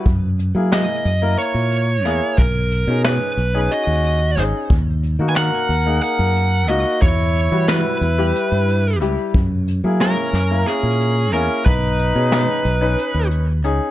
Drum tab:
HH |xxxxxxx|xxxxxxx|xxxxxxx|xxxxxxx|
SD |--o---o|--o---o|--o----|--o----|
BD |o------|o------|o------|o------|

HH |xxxxxxx|xxxxxxx|
SD |--ooo--|--o----|
BD |o------|o------|